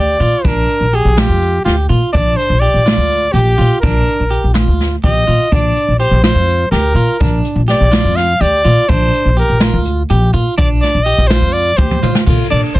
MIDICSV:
0, 0, Header, 1, 5, 480
1, 0, Start_track
1, 0, Key_signature, -2, "major"
1, 0, Tempo, 482315
1, 449, Time_signature, 7, 3, 24, 8
1, 12738, End_track
2, 0, Start_track
2, 0, Title_t, "Trumpet"
2, 0, Program_c, 0, 56
2, 0, Note_on_c, 0, 74, 94
2, 457, Note_on_c, 0, 70, 90
2, 472, Note_off_c, 0, 74, 0
2, 947, Note_on_c, 0, 68, 81
2, 962, Note_off_c, 0, 70, 0
2, 1184, Note_on_c, 0, 67, 84
2, 1199, Note_off_c, 0, 68, 0
2, 1634, Note_off_c, 0, 67, 0
2, 1640, Note_on_c, 0, 65, 68
2, 1750, Note_off_c, 0, 65, 0
2, 2119, Note_on_c, 0, 74, 102
2, 2354, Note_on_c, 0, 72, 97
2, 2369, Note_off_c, 0, 74, 0
2, 2583, Note_on_c, 0, 74, 106
2, 2598, Note_off_c, 0, 72, 0
2, 3306, Note_on_c, 0, 67, 86
2, 3321, Note_off_c, 0, 74, 0
2, 3777, Note_off_c, 0, 67, 0
2, 3783, Note_on_c, 0, 70, 84
2, 4477, Note_off_c, 0, 70, 0
2, 5021, Note_on_c, 0, 75, 97
2, 5506, Note_on_c, 0, 74, 91
2, 5521, Note_off_c, 0, 75, 0
2, 5958, Note_off_c, 0, 74, 0
2, 5964, Note_on_c, 0, 72, 83
2, 6189, Note_off_c, 0, 72, 0
2, 6212, Note_on_c, 0, 72, 92
2, 6657, Note_off_c, 0, 72, 0
2, 6679, Note_on_c, 0, 70, 81
2, 7364, Note_off_c, 0, 70, 0
2, 7665, Note_on_c, 0, 74, 96
2, 8122, Note_on_c, 0, 77, 101
2, 8137, Note_off_c, 0, 74, 0
2, 8369, Note_on_c, 0, 74, 108
2, 8384, Note_off_c, 0, 77, 0
2, 8843, Note_on_c, 0, 72, 94
2, 8858, Note_off_c, 0, 74, 0
2, 9325, Note_off_c, 0, 72, 0
2, 9345, Note_on_c, 0, 70, 82
2, 9783, Note_off_c, 0, 70, 0
2, 10525, Note_on_c, 0, 74, 97
2, 10634, Note_off_c, 0, 74, 0
2, 10760, Note_on_c, 0, 74, 97
2, 10983, Note_on_c, 0, 75, 104
2, 10998, Note_off_c, 0, 74, 0
2, 11218, Note_on_c, 0, 72, 90
2, 11233, Note_off_c, 0, 75, 0
2, 11474, Note_on_c, 0, 74, 101
2, 11489, Note_off_c, 0, 72, 0
2, 11711, Note_on_c, 0, 72, 85
2, 11726, Note_off_c, 0, 74, 0
2, 12198, Note_off_c, 0, 72, 0
2, 12445, Note_on_c, 0, 74, 100
2, 12554, Note_off_c, 0, 74, 0
2, 12683, Note_on_c, 0, 72, 84
2, 12738, Note_off_c, 0, 72, 0
2, 12738, End_track
3, 0, Start_track
3, 0, Title_t, "Clean electric guitar"
3, 0, Program_c, 1, 27
3, 0, Note_on_c, 1, 67, 75
3, 165, Note_off_c, 1, 67, 0
3, 202, Note_on_c, 1, 65, 72
3, 406, Note_off_c, 1, 65, 0
3, 445, Note_on_c, 1, 62, 78
3, 850, Note_off_c, 1, 62, 0
3, 929, Note_on_c, 1, 67, 70
3, 1130, Note_off_c, 1, 67, 0
3, 1168, Note_on_c, 1, 65, 80
3, 1572, Note_off_c, 1, 65, 0
3, 1646, Note_on_c, 1, 67, 81
3, 1849, Note_off_c, 1, 67, 0
3, 1884, Note_on_c, 1, 65, 80
3, 2088, Note_off_c, 1, 65, 0
3, 2122, Note_on_c, 1, 62, 77
3, 2528, Note_off_c, 1, 62, 0
3, 2604, Note_on_c, 1, 67, 73
3, 2808, Note_off_c, 1, 67, 0
3, 2845, Note_on_c, 1, 65, 83
3, 3250, Note_off_c, 1, 65, 0
3, 3328, Note_on_c, 1, 67, 85
3, 3530, Note_off_c, 1, 67, 0
3, 3562, Note_on_c, 1, 65, 77
3, 3767, Note_off_c, 1, 65, 0
3, 3812, Note_on_c, 1, 62, 86
3, 4214, Note_off_c, 1, 62, 0
3, 4284, Note_on_c, 1, 67, 67
3, 4488, Note_off_c, 1, 67, 0
3, 4520, Note_on_c, 1, 65, 76
3, 4927, Note_off_c, 1, 65, 0
3, 5012, Note_on_c, 1, 67, 76
3, 5212, Note_off_c, 1, 67, 0
3, 5248, Note_on_c, 1, 65, 76
3, 5450, Note_off_c, 1, 65, 0
3, 5493, Note_on_c, 1, 62, 82
3, 5894, Note_off_c, 1, 62, 0
3, 5970, Note_on_c, 1, 67, 65
3, 6171, Note_off_c, 1, 67, 0
3, 6211, Note_on_c, 1, 65, 74
3, 6613, Note_off_c, 1, 65, 0
3, 6690, Note_on_c, 1, 67, 81
3, 6891, Note_off_c, 1, 67, 0
3, 6923, Note_on_c, 1, 65, 75
3, 7127, Note_off_c, 1, 65, 0
3, 7169, Note_on_c, 1, 62, 84
3, 7572, Note_off_c, 1, 62, 0
3, 7642, Note_on_c, 1, 67, 71
3, 7846, Note_off_c, 1, 67, 0
3, 7878, Note_on_c, 1, 65, 78
3, 8285, Note_off_c, 1, 65, 0
3, 8365, Note_on_c, 1, 67, 87
3, 8568, Note_off_c, 1, 67, 0
3, 8604, Note_on_c, 1, 65, 78
3, 8807, Note_off_c, 1, 65, 0
3, 8843, Note_on_c, 1, 62, 92
3, 9248, Note_off_c, 1, 62, 0
3, 9323, Note_on_c, 1, 67, 75
3, 9527, Note_off_c, 1, 67, 0
3, 9568, Note_on_c, 1, 65, 85
3, 9971, Note_off_c, 1, 65, 0
3, 10052, Note_on_c, 1, 67, 91
3, 10251, Note_off_c, 1, 67, 0
3, 10287, Note_on_c, 1, 65, 80
3, 10489, Note_off_c, 1, 65, 0
3, 10524, Note_on_c, 1, 62, 95
3, 10928, Note_off_c, 1, 62, 0
3, 11006, Note_on_c, 1, 67, 73
3, 11208, Note_off_c, 1, 67, 0
3, 11248, Note_on_c, 1, 65, 86
3, 11650, Note_off_c, 1, 65, 0
3, 11731, Note_on_c, 1, 67, 88
3, 11930, Note_off_c, 1, 67, 0
3, 11970, Note_on_c, 1, 65, 86
3, 12170, Note_off_c, 1, 65, 0
3, 12206, Note_on_c, 1, 65, 81
3, 12408, Note_off_c, 1, 65, 0
3, 12444, Note_on_c, 1, 62, 73
3, 12738, Note_off_c, 1, 62, 0
3, 12738, End_track
4, 0, Start_track
4, 0, Title_t, "Upright bass"
4, 0, Program_c, 2, 32
4, 0, Note_on_c, 2, 38, 87
4, 144, Note_off_c, 2, 38, 0
4, 198, Note_on_c, 2, 46, 79
4, 296, Note_off_c, 2, 46, 0
4, 440, Note_on_c, 2, 34, 86
4, 632, Note_off_c, 2, 34, 0
4, 801, Note_on_c, 2, 34, 78
4, 993, Note_off_c, 2, 34, 0
4, 1042, Note_on_c, 2, 34, 80
4, 1233, Note_off_c, 2, 34, 0
4, 1284, Note_on_c, 2, 41, 83
4, 1568, Note_off_c, 2, 41, 0
4, 1649, Note_on_c, 2, 38, 84
4, 1838, Note_off_c, 2, 38, 0
4, 1884, Note_on_c, 2, 46, 84
4, 1980, Note_off_c, 2, 46, 0
4, 2132, Note_on_c, 2, 34, 95
4, 2319, Note_off_c, 2, 34, 0
4, 2484, Note_on_c, 2, 34, 82
4, 2675, Note_off_c, 2, 34, 0
4, 2726, Note_on_c, 2, 34, 76
4, 2916, Note_off_c, 2, 34, 0
4, 2958, Note_on_c, 2, 38, 83
4, 3245, Note_off_c, 2, 38, 0
4, 3319, Note_on_c, 2, 34, 86
4, 3511, Note_off_c, 2, 34, 0
4, 3569, Note_on_c, 2, 46, 82
4, 3663, Note_off_c, 2, 46, 0
4, 3812, Note_on_c, 2, 34, 97
4, 3999, Note_off_c, 2, 34, 0
4, 4179, Note_on_c, 2, 34, 76
4, 4363, Note_off_c, 2, 34, 0
4, 4417, Note_on_c, 2, 34, 79
4, 4603, Note_off_c, 2, 34, 0
4, 4655, Note_on_c, 2, 38, 82
4, 4935, Note_off_c, 2, 38, 0
4, 5010, Note_on_c, 2, 34, 82
4, 5198, Note_off_c, 2, 34, 0
4, 5255, Note_on_c, 2, 46, 79
4, 5347, Note_off_c, 2, 46, 0
4, 5492, Note_on_c, 2, 34, 90
4, 5679, Note_off_c, 2, 34, 0
4, 5854, Note_on_c, 2, 34, 77
4, 6040, Note_off_c, 2, 34, 0
4, 6081, Note_on_c, 2, 34, 84
4, 6272, Note_off_c, 2, 34, 0
4, 6320, Note_on_c, 2, 41, 90
4, 6606, Note_off_c, 2, 41, 0
4, 6682, Note_on_c, 2, 38, 95
4, 6873, Note_off_c, 2, 38, 0
4, 6909, Note_on_c, 2, 46, 85
4, 7011, Note_off_c, 2, 46, 0
4, 7171, Note_on_c, 2, 34, 96
4, 7358, Note_off_c, 2, 34, 0
4, 7518, Note_on_c, 2, 34, 88
4, 7710, Note_off_c, 2, 34, 0
4, 7767, Note_on_c, 2, 34, 85
4, 7956, Note_off_c, 2, 34, 0
4, 8003, Note_on_c, 2, 41, 88
4, 8287, Note_off_c, 2, 41, 0
4, 8364, Note_on_c, 2, 38, 94
4, 8554, Note_off_c, 2, 38, 0
4, 8609, Note_on_c, 2, 46, 94
4, 8703, Note_off_c, 2, 46, 0
4, 8849, Note_on_c, 2, 34, 99
4, 9037, Note_off_c, 2, 34, 0
4, 9208, Note_on_c, 2, 34, 84
4, 9396, Note_off_c, 2, 34, 0
4, 9448, Note_on_c, 2, 34, 83
4, 9636, Note_off_c, 2, 34, 0
4, 9686, Note_on_c, 2, 38, 95
4, 9969, Note_off_c, 2, 38, 0
4, 10054, Note_on_c, 2, 34, 91
4, 10239, Note_off_c, 2, 34, 0
4, 10289, Note_on_c, 2, 46, 86
4, 10383, Note_off_c, 2, 46, 0
4, 10530, Note_on_c, 2, 34, 101
4, 10717, Note_off_c, 2, 34, 0
4, 10893, Note_on_c, 2, 34, 84
4, 11079, Note_off_c, 2, 34, 0
4, 11127, Note_on_c, 2, 34, 86
4, 11315, Note_off_c, 2, 34, 0
4, 11362, Note_on_c, 2, 41, 90
4, 11646, Note_off_c, 2, 41, 0
4, 11727, Note_on_c, 2, 38, 97
4, 11915, Note_off_c, 2, 38, 0
4, 11968, Note_on_c, 2, 46, 89
4, 12061, Note_off_c, 2, 46, 0
4, 12215, Note_on_c, 2, 46, 98
4, 12306, Note_off_c, 2, 46, 0
4, 12455, Note_on_c, 2, 46, 83
4, 12545, Note_off_c, 2, 46, 0
4, 12690, Note_on_c, 2, 44, 86
4, 12738, Note_off_c, 2, 44, 0
4, 12738, End_track
5, 0, Start_track
5, 0, Title_t, "Drums"
5, 205, Note_on_c, 9, 42, 50
5, 304, Note_off_c, 9, 42, 0
5, 442, Note_on_c, 9, 42, 74
5, 446, Note_on_c, 9, 36, 100
5, 541, Note_off_c, 9, 42, 0
5, 546, Note_off_c, 9, 36, 0
5, 685, Note_on_c, 9, 42, 62
5, 784, Note_off_c, 9, 42, 0
5, 925, Note_on_c, 9, 42, 61
5, 1024, Note_off_c, 9, 42, 0
5, 1169, Note_on_c, 9, 38, 92
5, 1169, Note_on_c, 9, 42, 76
5, 1269, Note_off_c, 9, 38, 0
5, 1269, Note_off_c, 9, 42, 0
5, 1413, Note_on_c, 9, 42, 61
5, 1513, Note_off_c, 9, 42, 0
5, 1660, Note_on_c, 9, 38, 33
5, 1660, Note_on_c, 9, 42, 80
5, 1760, Note_off_c, 9, 38, 0
5, 1760, Note_off_c, 9, 42, 0
5, 1901, Note_on_c, 9, 42, 57
5, 2000, Note_off_c, 9, 42, 0
5, 2135, Note_on_c, 9, 36, 104
5, 2138, Note_on_c, 9, 42, 84
5, 2234, Note_off_c, 9, 36, 0
5, 2237, Note_off_c, 9, 42, 0
5, 2379, Note_on_c, 9, 42, 62
5, 2479, Note_off_c, 9, 42, 0
5, 2628, Note_on_c, 9, 42, 56
5, 2728, Note_off_c, 9, 42, 0
5, 2861, Note_on_c, 9, 38, 96
5, 2861, Note_on_c, 9, 42, 73
5, 2961, Note_off_c, 9, 38, 0
5, 2961, Note_off_c, 9, 42, 0
5, 3102, Note_on_c, 9, 42, 59
5, 3202, Note_off_c, 9, 42, 0
5, 3336, Note_on_c, 9, 42, 77
5, 3435, Note_off_c, 9, 42, 0
5, 3573, Note_on_c, 9, 42, 52
5, 3673, Note_off_c, 9, 42, 0
5, 3815, Note_on_c, 9, 36, 104
5, 3818, Note_on_c, 9, 42, 77
5, 3914, Note_off_c, 9, 36, 0
5, 3917, Note_off_c, 9, 42, 0
5, 4060, Note_on_c, 9, 42, 59
5, 4160, Note_off_c, 9, 42, 0
5, 4293, Note_on_c, 9, 42, 59
5, 4393, Note_off_c, 9, 42, 0
5, 4528, Note_on_c, 9, 38, 98
5, 4528, Note_on_c, 9, 42, 69
5, 4628, Note_off_c, 9, 38, 0
5, 4628, Note_off_c, 9, 42, 0
5, 4781, Note_on_c, 9, 38, 33
5, 4781, Note_on_c, 9, 42, 61
5, 4881, Note_off_c, 9, 38, 0
5, 4881, Note_off_c, 9, 42, 0
5, 5014, Note_on_c, 9, 36, 108
5, 5015, Note_on_c, 9, 42, 78
5, 5113, Note_off_c, 9, 36, 0
5, 5115, Note_off_c, 9, 42, 0
5, 5264, Note_on_c, 9, 42, 56
5, 5363, Note_off_c, 9, 42, 0
5, 5496, Note_on_c, 9, 36, 109
5, 5503, Note_on_c, 9, 42, 86
5, 5596, Note_off_c, 9, 36, 0
5, 5603, Note_off_c, 9, 42, 0
5, 5737, Note_on_c, 9, 42, 63
5, 5836, Note_off_c, 9, 42, 0
5, 5975, Note_on_c, 9, 42, 64
5, 6075, Note_off_c, 9, 42, 0
5, 6206, Note_on_c, 9, 38, 104
5, 6206, Note_on_c, 9, 42, 83
5, 6305, Note_off_c, 9, 38, 0
5, 6305, Note_off_c, 9, 42, 0
5, 6459, Note_on_c, 9, 42, 65
5, 6559, Note_off_c, 9, 42, 0
5, 6698, Note_on_c, 9, 38, 32
5, 6698, Note_on_c, 9, 42, 84
5, 6797, Note_off_c, 9, 38, 0
5, 6797, Note_off_c, 9, 42, 0
5, 6929, Note_on_c, 9, 42, 60
5, 7029, Note_off_c, 9, 42, 0
5, 7168, Note_on_c, 9, 42, 83
5, 7173, Note_on_c, 9, 36, 111
5, 7268, Note_off_c, 9, 42, 0
5, 7273, Note_off_c, 9, 36, 0
5, 7409, Note_on_c, 9, 42, 58
5, 7508, Note_off_c, 9, 42, 0
5, 7652, Note_on_c, 9, 38, 35
5, 7652, Note_on_c, 9, 42, 57
5, 7751, Note_off_c, 9, 38, 0
5, 7751, Note_off_c, 9, 42, 0
5, 7892, Note_on_c, 9, 38, 105
5, 7892, Note_on_c, 9, 42, 71
5, 7991, Note_off_c, 9, 38, 0
5, 7991, Note_off_c, 9, 42, 0
5, 8132, Note_on_c, 9, 38, 33
5, 8132, Note_on_c, 9, 42, 61
5, 8232, Note_off_c, 9, 38, 0
5, 8232, Note_off_c, 9, 42, 0
5, 8373, Note_on_c, 9, 42, 79
5, 8473, Note_off_c, 9, 42, 0
5, 8608, Note_on_c, 9, 42, 57
5, 8708, Note_off_c, 9, 42, 0
5, 8839, Note_on_c, 9, 42, 80
5, 8852, Note_on_c, 9, 36, 107
5, 8938, Note_off_c, 9, 42, 0
5, 8951, Note_off_c, 9, 36, 0
5, 9088, Note_on_c, 9, 42, 62
5, 9188, Note_off_c, 9, 42, 0
5, 9333, Note_on_c, 9, 42, 61
5, 9432, Note_off_c, 9, 42, 0
5, 9558, Note_on_c, 9, 38, 100
5, 9558, Note_on_c, 9, 42, 77
5, 9657, Note_off_c, 9, 38, 0
5, 9657, Note_off_c, 9, 42, 0
5, 9804, Note_on_c, 9, 42, 64
5, 9904, Note_off_c, 9, 42, 0
5, 10044, Note_on_c, 9, 42, 88
5, 10144, Note_off_c, 9, 42, 0
5, 10295, Note_on_c, 9, 42, 61
5, 10394, Note_off_c, 9, 42, 0
5, 10531, Note_on_c, 9, 42, 94
5, 10535, Note_on_c, 9, 36, 115
5, 10631, Note_off_c, 9, 42, 0
5, 10635, Note_off_c, 9, 36, 0
5, 10781, Note_on_c, 9, 38, 36
5, 10781, Note_on_c, 9, 42, 66
5, 10881, Note_off_c, 9, 38, 0
5, 10881, Note_off_c, 9, 42, 0
5, 11009, Note_on_c, 9, 42, 60
5, 11109, Note_off_c, 9, 42, 0
5, 11249, Note_on_c, 9, 38, 102
5, 11249, Note_on_c, 9, 42, 78
5, 11349, Note_off_c, 9, 38, 0
5, 11349, Note_off_c, 9, 42, 0
5, 11489, Note_on_c, 9, 42, 62
5, 11588, Note_off_c, 9, 42, 0
5, 11723, Note_on_c, 9, 48, 63
5, 11730, Note_on_c, 9, 36, 107
5, 11822, Note_off_c, 9, 48, 0
5, 11829, Note_off_c, 9, 36, 0
5, 11852, Note_on_c, 9, 47, 66
5, 11952, Note_off_c, 9, 47, 0
5, 11972, Note_on_c, 9, 45, 88
5, 12072, Note_off_c, 9, 45, 0
5, 12091, Note_on_c, 9, 38, 93
5, 12191, Note_off_c, 9, 38, 0
5, 12210, Note_on_c, 9, 49, 97
5, 12212, Note_on_c, 9, 36, 106
5, 12309, Note_off_c, 9, 49, 0
5, 12312, Note_off_c, 9, 36, 0
5, 12458, Note_on_c, 9, 51, 60
5, 12557, Note_off_c, 9, 51, 0
5, 12694, Note_on_c, 9, 36, 66
5, 12699, Note_on_c, 9, 51, 59
5, 12738, Note_off_c, 9, 36, 0
5, 12738, Note_off_c, 9, 51, 0
5, 12738, End_track
0, 0, End_of_file